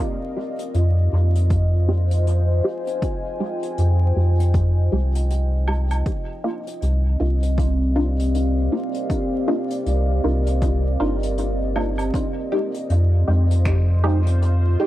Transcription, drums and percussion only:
0.59 closed hi-hat medium
0.74 closed hi-hat medium
1.35 closed hi-hat medium
1.50 kick medium
1.50 closed hi-hat medium
2.11 closed hi-hat medium
2.27 closed hi-hat medium
2.87 closed hi-hat medium
3.02 kick loud
3.02 closed hi-hat soft
3.63 closed hi-hat medium
3.78 closed hi-hat medium
4.40 closed hi-hat medium
4.54 kick loud
4.54 closed hi-hat medium
5.15 closed hi-hat medium
5.30 closed hi-hat medium
5.68 low woodblock medium
5.91 closed hi-hat medium
5.91 low woodblock medium
6.06 kick loud
6.06 closed hi-hat medium
6.67 closed hi-hat medium
6.82 closed hi-hat medium
7.43 closed hi-hat medium
7.58 kick loud
7.58 closed hi-hat medium
8.19 closed hi-hat medium
8.35 closed hi-hat medium
8.94 closed hi-hat medium
9.10 kick loud
9.10 closed hi-hat soft
9.70 closed hi-hat medium
9.86 closed hi-hat medium
10.47 closed hi-hat medium
10.62 kick loud
10.62 closed hi-hat medium
11.23 closed hi-hat medium
11.38 closed hi-hat medium
11.76 low woodblock medium
11.98 closed hi-hat medium
11.98 low woodblock medium
12.14 kick loud
12.14 closed hi-hat medium
12.74 closed hi-hat medium
12.90 closed hi-hat medium
13.51 closed hi-hat medium
13.65 finger snap medium
13.65 kick loud
13.65 closed hi-hat soft
14.26 closed hi-hat medium
14.42 closed hi-hat medium

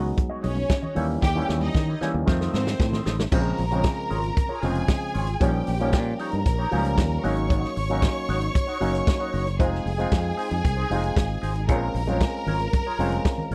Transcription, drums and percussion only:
0.17 kick loud
0.17 closed hi-hat medium
0.17 muted conga soft
0.17 high conga medium
0.44 open hi-hat medium
0.44 muted conga soft
0.44 high conga medium
0.57 high conga medium
0.69 kick loud
0.69 snare loud
0.69 closed hi-hat medium
0.83 low conga medium
0.96 open hi-hat medium
0.96 muted conga soft
1.22 kick loud
1.22 snare medium
1.49 snare medium
1.49 muted conga soft
1.61 high conga medium
1.75 kick loud
1.75 snare medium
2.01 snare medium
2.01 low conga medium
2.27 kick loud
2.27 snare medium
2.27 muted conga soft
2.27 high conga medium
2.41 snare medium
2.54 snare medium
2.54 high conga medium
2.67 snare medium
2.67 high conga medium
2.80 kick loud
2.80 snare loud
2.80 muted conga soft
2.92 snare medium
2.92 low conga medium
3.06 snare loud
3.06 muted conga soft
3.19 snare loud
3.32 kick loud
3.32 crash loud
3.58 open hi-hat medium
3.71 closed hi-hat soft
3.83 kick loud
3.83 snare loud
3.83 closed hi-hat medium
4.10 open hi-hat medium
4.23 closed hi-hat medium
4.37 kick loud
4.37 closed hi-hat medium
4.63 open hi-hat medium
4.75 closed hi-hat medium
4.88 kick loud
4.88 snare loud
4.88 closed hi-hat medium
5.14 open hi-hat medium
5.27 closed hi-hat medium
5.41 kick loud
5.41 closed hi-hat medium
5.67 open hi-hat medium
5.80 closed hi-hat soft
5.92 kick loud
5.92 snare loud
5.92 closed hi-hat medium
6.19 open hi-hat medium
6.32 closed hi-hat medium
6.46 kick loud
6.46 closed hi-hat medium
6.72 open hi-hat medium
6.85 closed hi-hat medium
6.98 kick loud
6.98 snare loud
6.98 closed hi-hat medium
7.24 open hi-hat medium
7.37 closed hi-hat medium
7.50 kick loud
7.50 closed hi-hat medium
7.64 snare soft
7.77 open hi-hat medium
7.90 closed hi-hat soft
8.02 kick loud
8.02 snare loud
8.02 closed hi-hat medium
8.29 open hi-hat medium
8.42 closed hi-hat medium
8.55 kick loud
8.55 closed hi-hat medium
8.82 open hi-hat medium
8.95 closed hi-hat medium
9.07 kick loud
9.07 snare loud
9.07 closed hi-hat medium
9.34 open hi-hat medium
9.47 closed hi-hat medium
9.60 kick loud
9.60 closed hi-hat medium
9.74 snare soft
9.87 open hi-hat medium
10.00 closed hi-hat soft
10.12 kick loud
10.12 snare loud
10.12 closed hi-hat medium
10.38 open hi-hat medium
10.51 closed hi-hat medium
10.65 kick loud
10.65 closed hi-hat medium
10.91 open hi-hat medium
11.04 closed hi-hat medium
11.16 kick loud
11.16 snare loud
11.16 closed hi-hat medium
11.43 open hi-hat medium
11.55 closed hi-hat medium
11.68 kick loud
11.68 closed hi-hat medium
11.68 muted conga soft
11.95 open hi-hat medium
11.95 muted conga soft
12.08 closed hi-hat soft
12.08 high conga loud
12.20 kick loud
12.20 snare loud
12.20 closed hi-hat medium
12.47 open hi-hat medium
12.47 muted conga soft
12.47 high conga medium
12.47 low conga medium
12.60 closed hi-hat medium
12.73 kick loud
12.73 closed hi-hat medium
12.73 high conga medium
12.99 open hi-hat medium
12.99 muted conga soft
12.99 high conga medium
13.12 closed hi-hat medium
13.12 high conga medium
13.25 kick loud
13.25 snare loud
13.25 closed hi-hat medium
13.25 muted conga soft
13.38 low conga medium
13.51 open hi-hat medium
13.51 muted conga soft

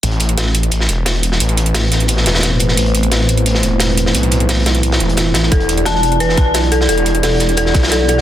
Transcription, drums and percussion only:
0.03 closed hi-hat medium
0.11 closed hi-hat soft
0.20 closed hi-hat medium
0.29 closed hi-hat soft
0.38 snare loud
0.38 closed hi-hat medium
0.46 snare soft
0.54 closed hi-hat medium
0.63 closed hi-hat soft
0.71 closed hi-hat medium
0.80 snare medium
0.89 closed hi-hat medium
1.06 snare loud
1.06 closed hi-hat medium
1.15 closed hi-hat soft
1.23 closed hi-hat medium
1.32 snare soft
1.40 closed hi-hat medium
1.49 closed hi-hat soft
1.57 closed hi-hat medium
1.66 closed hi-hat soft
1.74 snare loud
1.74 closed hi-hat medium
1.74 open hi-hat medium
1.92 snare soft
1.92 closed hi-hat medium
2.00 closed hi-hat soft
2.08 closed hi-hat medium
2.17 snare soft
2.26 snare loud
2.26 closed hi-hat medium
2.35 snare medium
2.35 closed hi-hat medium
2.38 snare medium
2.38 closed hi-hat medium
2.43 snare loud
2.43 closed hi-hat medium
2.60 closed hi-hat medium
2.69 snare soft
2.77 closed hi-hat medium
2.86 closed hi-hat soft
2.95 closed hi-hat medium
3.03 closed hi-hat soft
3.12 snare loud
3.12 closed hi-hat medium
3.21 snare soft
3.29 closed hi-hat medium
3.37 closed hi-hat soft
3.46 closed hi-hat medium
3.55 snare medium
3.63 closed hi-hat medium
3.80 snare loud
3.80 closed hi-hat medium
3.90 closed hi-hat soft
3.97 closed hi-hat medium
4.06 snare soft
4.15 closed hi-hat medium
4.23 closed hi-hat soft
4.31 closed hi-hat medium
4.40 closed hi-hat soft
4.49 snare loud
4.49 closed hi-hat medium
4.49 open hi-hat medium
4.66 snare loud
4.66 closed hi-hat medium
4.75 closed hi-hat soft
4.83 closed hi-hat medium
4.92 snare medium
4.92 closed hi-hat medium
5.00 closed hi-hat medium
5.09 closed hi-hat medium
5.17 snare loud
5.17 closed hi-hat medium
5.34 snare loud
5.34 closed hi-hat medium
5.43 snare soft
5.52 kick loud
5.52 closed hi-hat medium
5.60 closed hi-hat soft
5.69 closed hi-hat medium
5.77 closed hi-hat soft
5.86 snare loud
5.86 closed hi-hat medium
5.95 snare soft
6.03 closed hi-hat medium
6.12 closed hi-hat soft
6.20 closed hi-hat medium
6.29 snare soft
6.37 kick loud
6.37 closed hi-hat medium
6.54 snare loud
6.54 closed hi-hat medium
6.63 closed hi-hat soft
6.72 closed hi-hat medium
6.81 snare soft
6.89 closed hi-hat medium
6.98 closed hi-hat soft
7.06 closed hi-hat medium
7.15 closed hi-hat soft
7.23 snare loud
7.23 closed hi-hat medium
7.23 open hi-hat medium
7.40 snare soft
7.40 closed hi-hat medium
7.49 closed hi-hat soft
7.57 closed hi-hat medium
7.66 snare soft
7.74 kick loud
7.74 snare medium
7.74 closed hi-hat medium
7.83 snare medium
7.83 closed hi-hat medium
7.88 snare medium
7.88 closed hi-hat medium
7.91 snare loud
7.91 closed hi-hat medium
8.08 closed hi-hat medium
8.18 snare soft

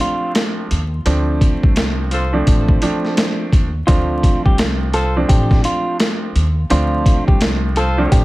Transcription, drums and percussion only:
0.35 snare loud
0.35 closed hi-hat medium
0.71 closed hi-hat medium
1.06 closed hi-hat medium
1.41 kick medium
1.41 closed hi-hat medium
1.63 kick medium
1.76 snare loud
1.76 closed hi-hat medium
2.11 closed hi-hat medium
2.47 kick medium
2.47 closed hi-hat medium
2.69 kick medium
2.82 closed hi-hat medium
3.05 snare soft
3.17 snare loud
3.17 closed hi-hat loud
3.52 kick medium
3.52 closed hi-hat medium
3.88 kick loud
3.88 closed hi-hat loud
4.23 kick medium
4.23 closed hi-hat medium
4.46 kick medium
4.58 snare loud
4.58 closed hi-hat medium
4.93 closed hi-hat medium
5.29 kick loud
5.29 closed hi-hat loud
5.51 kick medium
5.51 snare soft
5.64 closed hi-hat medium
6.00 snare loud
6.00 closed hi-hat medium
6.36 closed hi-hat medium
6.70 closed hi-hat loud
7.06 kick medium
7.06 closed hi-hat medium
7.28 kick medium
7.41 snare loud
7.41 closed hi-hat medium
7.76 closed hi-hat medium
8.12 kick loud
8.12 closed hi-hat medium

